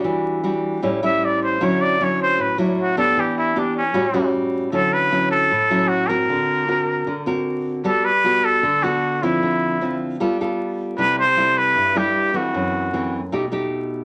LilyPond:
<<
  \new Staff \with { instrumentName = "Muted trumpet" } { \time 4/4 \key d \major \tempo 4 = 154 r2 r8 e''8 d''8 c''8 | cis''8 d''8 cis''8 c''8 b'8 d'8 fis'8 a'8 | g'8 e'8 d'8 cis'4. r4 | a'8 b'4 a'4. fis'8 bes'8~ |
bes'2~ bes'8 r4. | a'8 b'4 a'4 fis'4 e'8~ | e'4. r2 r8 | b'8 c''4 b'4 g'4 fis'8~ |
fis'4. r2 r8 | }
  \new Staff \with { instrumentName = "Nylon-string guitar" } { \time 4/4 \key d \major << { <g d' fis'>4 <g d' fis'>4 <g cis' e'>8 <g cis' e'>4. | <fis cis' e'>4 <fis cis' e'>4. <fis cis' e'>4 <b d' g'>8~ | <b d' g'>4 <b d' g'>8 r8 <g cis' fis'>8 <g cis' fis'>4. | <fis cis' e'>4 <fis cis' e'>4 r8 <fis cis' e'>4 <c' fis' bes'>8~ |
<c' fis' bes'>4 <c' fis' ais'>4 r8 <c' fis' ais'>4. | <b fis' a'>8 r8 <b fis' a'>4 r8 <b fis' a'>4 <f c' e'>8~ | <f c' e'>4 <f c' e'>4 <b f' a'>8 <b f' a'>4. | <g a e'>8 r8 <g a e'>4. <g a e'>4 <e a c'>8~ |
<e a c'>4 <e a c'>8 r8 <a dis' g'>8 <a dis' g'>4. | } \\ { e2 a,2 | d2 a,2 | e2 a,2 | d2 a,2 |
d2 d2 | g2 d2 | d2 g2 | c2 g,2 |
fis,2 b,2 | } >> }
>>